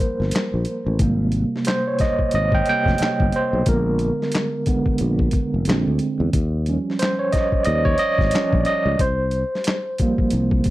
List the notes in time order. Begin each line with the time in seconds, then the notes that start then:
Already playing: F3 G3 A#3 A#4 C5
0.00 kick
0.20 G1, snare
0.31 muted fretless electric bass stroke, closed hi-hat
0.36 snare, clap
0.54 A#1
0.65 closed hi-hat
0.86 A1
0.99 G#1 C3 G3 A#3, kick, closed hi-hat
1.32 closed hi-hat
1.56 snare
1.65 C5, snare, clap, closed hi-hat
1.88 C#5
1.99 D#5, kick, snare, closed hi-hat
2.19 kick
2.31 G#1 D#5, closed hi-hat
2.52 G5, kick
2.66 C3 G3 A#3 G5, closed hi-hat
2.85 F1, kick, snare
2.98 muted fretless electric bass stroke, closed hi-hat
3.02 snare, clap
3.20 G1, kick
3.32 C5, closed hi-hat
3.53 B1
3.66 A#1 D3 G#3 B3 A#4, kick, closed hi-hat
3.99 closed hi-hat
4.22 snare
4.32 snare, clap, closed hi-hat
4.66 D3 G#3 B3, kick, closed hi-hat
4.86 kick
4.98 A#1, closed hi-hat
5.19 kick
5.31 kick, closed hi-hat
5.54 F1
5.65 A#1 D3 G#3, closed hi-hat
5.70 C4, snare, clap
5.87 D2
5.99 closed hi-hat
6.20 E2
6.33 D#2, kick, closed hi-hat
6.66 F3 G3 C#4, closed hi-hat
6.90 snare
6.99 C5, snare, clap, closed hi-hat
7.19 C#5
7.32 D#5, kick, snare, closed hi-hat
7.52 kick
7.63 D#2 D5 D#5, closed hi-hat
7.85 C#5, kick
7.98 D#5, closed hi-hat
8.18 G#1, kick, snare
8.31 F3 G3 C#4, muted fretless electric bass stroke, closed hi-hat
8.35 snare, clap
8.53 A#1, kick
8.60 D5
8.65 D#5, closed hi-hat
8.86 C#2
8.99 C2 C5, kick, closed hi-hat
9.31 closed hi-hat
9.55 snare
9.64 snare, clap, closed hi-hat
9.98 F3 G3 A#3, kick, closed hi-hat
10.18 kick
10.30 C2, closed hi-hat
10.51 kick
10.64 kick, closed hi-hat